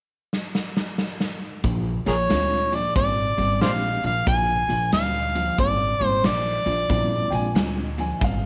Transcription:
0.33 snare medium
0.55 snare medium
0.77 snare medium
0.98 snare medium
1.20 snare medium
1.63 2.00 A#1 medium
1.63 2.02 A#2 medium
1.63 2.02 F3 medium
1.63 kick loud
1.63 closed hi-hat medium
2.06 2.26 A#1 medium
2.06 2.27 A#2 medium
2.06 2.27 F3 medium
2.06 2.14 G#4 medium
2.06 2.15 A#4 medium
2.06 2.76 C#5 medium
2.06 snare soft
2.06 closed hi-hat medium
2.29 2.86 D2 medium
2.29 2.68 A#2 medium
2.29 2.68 G3 medium
2.29 2.67 G#3 medium
2.29 2.68 C4 medium
2.29 2.68 D4 medium
2.29 2.68 F4 medium
2.29 snare medium
2.29 closed hi-hat medium
2.72 2.93 A#2 medium
2.72 2.93 F3 medium
2.72 2.96 D5 medium
2.72 closed hi-hat medium
2.96 3.31 G#1 medium
2.96 3.33 A#2 medium
2.96 3.34 G3 medium
2.96 3.57 D5 medium
2.96 kick medium
2.96 snare soft
2.96 closed hi-hat medium
3.38 3.57 G#1 medium
3.38 3.59 A#2 medium
3.38 3.59 G3 medium
3.38 closed hi-hat medium
3.61 3.97 A#1 medium
3.61 3.99 A#2 medium
3.61 3.99 F3 medium
3.61 3.99 G#3 medium
3.61 3.99 C4 medium
3.61 3.99 D4 medium
3.61 3.99 G4 medium
3.61 3.71 C5 medium
3.61 3.71 D5 medium
3.61 4.02 F5 medium
3.61 snare medium
3.61 closed hi-hat medium
4.04 4.23 A#1 medium
4.04 4.25 A#2 medium
4.04 4.25 F3 medium
4.04 4.26 F5 medium
4.04 closed hi-hat medium
4.26 4.63 A#1 medium
4.26 4.65 A#2 medium
4.26 4.65 F3 medium
4.26 4.89 G#5 loud
4.26 kick loud
4.26 closed hi-hat medium
4.69 4.89 A#1 medium
4.69 4.90 A#2 medium
4.69 4.90 F3 medium
4.69 closed hi-hat medium
4.92 5.48 D2 medium
4.92 5.31 A#2 medium
4.92 5.31 G3 medium
4.92 5.54 F5 medium
4.92 snare loud
4.92 closed hi-hat medium
5.35 5.56 A#2 medium
5.35 5.56 F3 medium
5.35 closed hi-hat medium
5.58 5.94 G#1 medium
5.58 5.97 A#2 medium
5.58 5.97 G3 medium
5.58 6.06 D5 medium
5.58 kick loud
5.58 closed hi-hat medium
6.00 6.20 G#1 medium
6.00 6.22 A#2 medium
6.00 6.22 G3 medium
6.00 closed hi-hat medium
6.06 6.21 C5 medium
6.24 6.60 A#1 medium
6.24 6.62 A#2 medium
6.24 6.63 F3 medium
6.24 7.52 D5 medium
6.24 snare medium
6.24 closed hi-hat medium
6.66 6.86 A#1 medium
6.66 6.87 A#2 medium
6.66 6.87 F3 medium
6.66 closed hi-hat medium
6.89 7.26 A#1 medium
6.89 7.28 A#2 medium
6.89 7.28 F3 medium
6.89 7.28 G3 medium
6.89 7.28 B3 medium
6.89 7.28 C#4 medium
6.89 7.28 E4 medium
6.89 kick loud
6.89 closed hi-hat medium
7.30 7.52 A#1 medium
7.30 7.53 A#2 medium
7.30 7.53 F3 medium
7.30 7.89 G#3 medium
7.30 7.90 C4 medium
7.30 7.90 F4 medium
7.30 7.33 G5 medium
7.30 closed hi-hat medium
7.35 7.97 G#5 medium
7.55 8.11 D2 medium
7.55 7.94 A#2 medium
7.55 7.94 G3 medium
7.55 snare loud
7.55 closed hi-hat medium
7.98 8.19 A#2 medium
7.98 8.20 F3 medium
7.98 8.22 G#5 medium
7.98 closed hi-hat medium
8.20 8.46 G#1 medium
8.20 8.46 A#2 medium
8.20 8.46 G3 medium
8.20 8.24 E5 medium
8.20 kick loud
8.20 snare soft
8.20 closed hi-hat medium
8.24 8.46 F5 medium

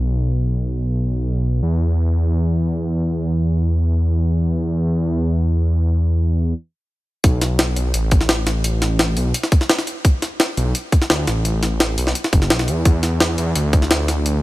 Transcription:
0.00 1.61 B1 medium
1.62 6.54 E2 medium
7.24 7.75 B1 loud
7.24 kick loud
7.24 closed hi-hat medium
7.41 snare soft
7.41 closed hi-hat medium
7.59 snare loud
7.59 closed hi-hat medium
7.76 7.92 B1 medium
7.76 closed hi-hat medium
7.94 9.15 A1 loud
7.94 closed hi-hat loud
8.11 kick loud
8.11 closed hi-hat medium
8.21 snare soft
8.29 snare loud
8.29 closed hi-hat loud
8.47 snare medium
8.47 closed hi-hat medium
8.64 closed hi-hat medium
8.82 snare soft
8.82 closed hi-hat medium
8.99 snare loud
8.99 closed hi-hat medium
9.17 9.33 B1 medium
9.17 open hi-hat medium
9.34 closed hi-hat loud
9.43 snare soft
9.52 kick loud
9.52 closed hi-hat medium
9.61 snare soft
9.69 snare loud
9.69 closed hi-hat loud
9.79 snare medium
9.87 closed hi-hat medium
10.05 kick loud
10.05 closed hi-hat medium
10.22 snare soft
10.22 closed hi-hat medium
10.40 snare loud
10.40 closed hi-hat medium
10.57 10.73 B1 medium
10.57 closed hi-hat medium
10.75 closed hi-hat loud
10.92 kick loud
10.92 closed hi-hat medium
11.02 snare soft
11.10 11.26 D2 loud
11.10 snare loud
11.10 closed hi-hat loud
11.27 11.96 A1 medium
11.27 snare soft
11.27 closed hi-hat medium
11.45 closed hi-hat medium
11.63 snare soft
11.63 closed hi-hat medium
11.80 snare loud
11.80 closed hi-hat medium
11.98 12.14 B1 medium
11.98 open hi-hat medium
12.07 snare soft
12.15 closed hi-hat medium
12.24 snare soft
12.33 12.52 F#1 medium
12.33 kick loud
12.33 closed hi-hat medium
12.42 snare soft
12.50 12.70 B1 medium
12.50 snare loud
12.50 closed hi-hat medium
12.59 snare medium
12.68 12.84 E2 medium
12.68 closed hi-hat medium
12.85 13.37 E2 loud
12.85 kick loud
12.85 closed hi-hat medium
13.03 snare soft
13.03 closed hi-hat medium
13.20 snare loud
13.20 closed hi-hat medium
13.38 13.54 E2 medium
13.38 closed hi-hat medium
13.55 14.42 D2 loud
13.55 closed hi-hat loud
13.73 kick loud
13.73 closed hi-hat medium
13.82 snare soft
13.91 snare loud
13.91 closed hi-hat medium
14.08 snare soft
14.08 closed hi-hat medium
14.26 closed hi-hat medium

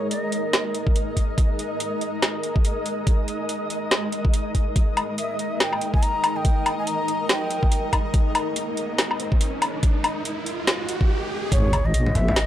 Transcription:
0.00 11.06 G#3 medium
0.00 4.72 D#4 medium
0.00 4.72 A#4 medium
0.00 11.09 D#5 medium
0.11 0.22 D5 medium
0.11 closed hi-hat medium
0.22 0.70 D#5 medium
0.32 closed hi-hat medium
0.53 snare loud
0.53 closed hi-hat medium
0.75 closed hi-hat medium
0.87 kick loud
0.96 closed hi-hat medium
1.17 kick medium
1.17 closed hi-hat medium
1.38 kick loud
1.38 closed hi-hat medium
1.59 closed hi-hat medium
1.80 closed hi-hat medium
2.01 closed hi-hat soft
2.22 snare loud
2.22 closed hi-hat medium
2.43 closed hi-hat soft
2.56 kick loud
2.65 closed hi-hat medium
2.86 closed hi-hat medium
3.07 kick loud
3.07 closed hi-hat medium
3.28 closed hi-hat soft
3.49 closed hi-hat medium
3.70 closed hi-hat soft
3.91 snare loud
3.91 closed hi-hat medium
4.12 closed hi-hat soft
4.25 kick loud
4.34 closed hi-hat medium
4.55 kick medium
4.55 closed hi-hat medium
4.76 11.06 D#4 medium
4.76 11.06 A#4 medium
4.76 11.06 D#5 medium
4.76 kick loud
4.76 closed hi-hat medium
4.76 riser medium
4.97 closed hi-hat soft
4.97 low woodblock medium
5.18 5.38 E5 medium
5.18 closed hi-hat medium
5.39 5.53 D#5 medium
5.39 closed hi-hat soft
5.52 5.62 E5 medium
5.60 5.93 G5 loud
5.60 snare loud
5.60 closed hi-hat medium
5.73 low woodblock medium
5.81 closed hi-hat soft
5.94 6.04 G#5 loud
5.94 kick loud
6.03 6.38 A#5 loud
6.03 closed hi-hat medium
6.24 closed hi-hat medium
6.24 low woodblock medium
6.36 6.78 G5 loud
6.45 kick loud
6.45 closed hi-hat medium
6.66 closed hi-hat soft
6.66 low woodblock medium
6.79 6.89 G#5 medium
6.87 7.29 A#5 loud
6.87 closed hi-hat medium
7.08 closed hi-hat soft
7.29 7.89 G5 medium
7.29 snare loud
7.29 closed hi-hat medium
7.50 closed hi-hat soft
7.63 kick loud
7.72 closed hi-hat medium
7.93 kick medium
7.93 closed hi-hat medium
7.93 low woodblock medium
8.14 kick loud
8.14 closed hi-hat medium
8.35 closed hi-hat medium
8.35 low woodblock medium
8.56 closed hi-hat medium
8.77 closed hi-hat soft
8.98 snare loud
8.98 closed hi-hat medium
9.11 low woodblock medium
9.20 closed hi-hat medium
9.32 kick loud
9.41 closed hi-hat medium
9.62 closed hi-hat medium
9.62 low woodblock medium
9.83 kick loud
9.83 closed hi-hat medium
10.04 closed hi-hat medium
10.04 low woodblock medium
10.25 closed hi-hat medium
10.46 closed hi-hat medium
10.67 snare loud
10.67 closed hi-hat medium
10.89 closed hi-hat medium
11.01 kick loud
11.52 11.93 G#1 medium
11.52 11.87 C#5 loud
11.52 12.46 D#5 medium
11.52 kick loud
11.52 closed hi-hat medium
11.52 sub drop medium
11.73 closed hi-hat medium
11.73 high conga medium
11.73 low woodblock medium
11.85 12.17 D#5 loud
11.94 12.35 A#1 loud
11.94 closed hi-hat medium
12.06 high conga medium
12.06 low conga medium
12.15 12.38 E5 loud
12.15 kick medium
12.15 closed hi-hat medium
12.15 low conga medium
12.28 low conga loud
12.36 12.46 G#1 medium
12.36 12.46 D#5 loud
12.36 snare loud
12.36 closed hi-hat medium

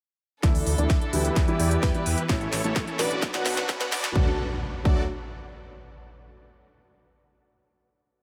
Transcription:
0.43 0.60 D2 loud
0.43 1.35 D3 medium
0.43 0.53 E3 medium
0.43 0.54 A3 medium
0.43 1.35 D4 medium
0.43 0.54 D4 medium
0.43 2.27 E4 medium
0.43 0.75 E4 medium
0.43 0.54 E4 medium
0.43 0.75 A4 medium
0.43 1.35 A4 medium
0.43 0.75 D5 loud
0.43 kick loud
0.43 snare soft
0.43 closed hi-hat medium
0.43 riser medium
0.55 open hi-hat medium
0.67 0.75 D2 medium
0.67 open hi-hat loud
0.78 0.87 D2 medium
0.78 0.88 E3 medium
0.78 0.88 A3 medium
0.78 0.89 D4 medium
0.78 0.98 E4 medium
0.78 0.89 E4 medium
0.78 0.98 A4 medium
0.78 0.98 D5 medium
0.78 closed hi-hat medium
0.90 0.98 D2 medium
0.90 kick loud
0.90 snare medium
0.90 closed hi-hat medium
1.01 1.10 E4 medium
1.01 1.10 A4 medium
1.01 1.10 D5 medium
1.01 closed hi-hat soft
1.13 1.30 D2 medium
1.13 1.45 E3 medium
1.13 1.45 G3 medium
1.13 1.45 B3 medium
1.13 1.45 E4 medium
1.13 1.46 E4 medium
1.13 1.45 G4 medium
1.13 1.45 B4 loud
1.13 open hi-hat loud
1.25 closed hi-hat medium
1.36 1.45 E2 medium
1.36 3.21 E3 medium
1.36 2.28 G4 medium
1.36 2.28 B4 medium
1.36 kick loud
1.36 snare medium
1.36 closed hi-hat medium
1.47 1.91 E3 medium
1.47 1.92 G3 medium
1.47 1.92 B3 medium
1.47 2.03 E4 medium
1.47 1.92 E4 loud
1.47 2.03 G4 medium
1.47 2.03 D5 loud
1.47 closed hi-hat soft
1.60 1.76 E2 medium
1.60 open hi-hat loud
1.71 closed hi-hat medium
1.83 1.91 E2 loud
1.83 2.03 B4 medium
1.83 kick loud
1.83 snare medium
1.83 closed hi-hat medium
1.94 2.26 E3 medium
1.94 2.27 G3 medium
1.94 2.27 B3 medium
1.94 2.27 E4 medium
1.94 closed hi-hat soft
2.06 2.15 E2 loud
2.06 2.23 E4 medium
2.06 2.23 G4 medium
2.06 2.23 B4 medium
2.06 open hi-hat loud
2.18 closed hi-hat medium
2.29 2.46 A1 loud
2.29 2.39 A2 medium
2.29 2.40 E3 medium
2.29 2.40 A3 medium
2.29 3.21 A3 medium
2.29 3.21 C#4 medium
2.29 2.40 C#4 medium
2.29 2.61 E4 medium
2.29 2.40 E4 medium
2.29 2.61 A4 medium
2.29 2.61 C#5 loud
2.29 kick loud
2.29 snare medium
2.29 closed hi-hat medium
2.41 closed hi-hat soft
2.53 2.61 A1 loud
2.53 snare medium
2.53 open hi-hat loud
2.64 2.73 A1 medium
2.64 2.74 A2 medium
2.64 2.74 E3 medium
2.64 2.75 A3 medium
2.64 2.75 C#4 medium
2.64 2.84 E4 medium
2.64 2.75 E4 medium
2.64 2.84 A4 medium
2.64 2.84 C#5 medium
2.64 closed hi-hat medium
2.76 2.84 A1 medium
2.76 kick loud
2.76 snare medium
2.76 closed hi-hat medium
2.87 2.96 E4 medium
2.87 2.96 A4 medium
2.87 2.96 C#5 medium
2.87 closed hi-hat soft
2.99 3.16 A1 medium
2.99 3.31 B2 medium
2.99 3.31 F#3 medium
2.99 3.31 B3 medium
2.99 3.31 D4 medium
2.99 3.31 F#4 loud
2.99 3.32 F#4 medium
2.99 3.20 B4 medium
2.99 3.31 B4 medium
2.99 3.31 D5 loud
2.99 snare medium
2.99 open hi-hat loud
3.11 closed hi-hat medium
3.22 3.31 B1 medium
3.22 4.15 F#3 medium
3.22 4.15 B3 medium
3.22 4.14 D4 medium
3.22 kick loud
3.22 snare medium
3.22 closed hi-hat medium
3.34 3.78 B2 loud
3.34 3.78 F#3 medium
3.34 3.78 B3 medium
3.34 3.78 D4 medium
3.34 3.89 F#4 medium
3.34 3.78 F#4 loud
3.34 3.89 B4 medium
3.34 3.89 F#5 loud
3.34 snare medium
3.34 closed hi-hat soft
3.46 3.63 B1 loud
3.46 3.53 B4 medium
3.46 snare loud
3.46 open hi-hat loud
3.57 3.65 B4 medium
3.57 snare medium
3.57 closed hi-hat medium
3.69 3.77 B1 loud
3.69 kick loud
3.69 snare loud
3.69 closed hi-hat medium
3.80 4.12 B2 medium
3.80 4.12 F#3 medium
3.80 4.13 B3 medium
3.80 4.13 D4 medium
3.80 4.13 F#4 medium
3.80 4.15 B4 medium
3.80 snare medium
3.80 closed hi-hat soft
3.92 4.01 B1 loud
3.92 4.09 F#4 medium
3.92 4.09 B4 medium
3.92 4.09 D5 medium
3.92 snare loud
3.92 open hi-hat loud
4.04 snare loud
4.04 closed hi-hat medium
4.14 4.28 D2 loud
4.14 4.37 D3 medium
4.14 4.27 F#3 medium
4.14 4.28 A3 medium
4.14 4.37 D4 medium
4.14 4.29 D4 medium
4.14 4.37 F#4 medium
4.14 4.28 F#4 medium
4.14 4.29 F#4 medium
4.14 4.37 A4 medium
4.14 4.28 A4 medium
4.14 4.28 D5 medium
4.14 kick loud
4.14 impact medium
4.83 5.07 D2 loud
4.83 5.02 F#3 medium
4.83 5.02 A3 medium
4.83 5.03 D4 medium
4.83 5.03 F#4 medium
4.83 5.03 F#4 loud
4.83 5.03 A4 medium
4.83 5.03 D5 medium
4.83 kick loud

